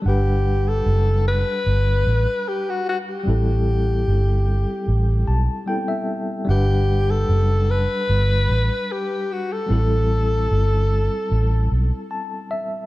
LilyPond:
<<
  \new Staff \with { instrumentName = "Alto saxophone" } { \time 4/4 \key g \major \tempo 4 = 75 g'8. a'8. b'4. g'16 fis'16 fis'16 g'16~ | g'2~ g'8. r4 r16 | g'8. a'8. b'4. g'8 fis'16 a'16~ | a'2~ a'8. r4 r16 | }
  \new Staff \with { instrumentName = "Tine electric piano" } { \time 4/4 \key g \major << { r1 | r2 r8 a''8 g''16 e''8. | r1 | r2. a''8 e''8 | } \\ { <g d' b' fis''>1 | <g c' e' a'>2. <g b c' e' a'>4 | <g d' b' fis''>1 | <g c' e' a'>1 | } >> }
  \new Staff \with { instrumentName = "Fingered electric bass" } { \clef bass \time 4/4 \key g \major g,,4 fis,,8. r16 g,,8 a,,16 r4 r16 | a,,4 g,,8. r16 a,,8 b,,16 r4 r16 | g,,4 fis,,8. r16 g,,8 a,,16 r4 r16 | a,,4 g,,8. r16 a,,8 b,,16 r4 r16 | }
>>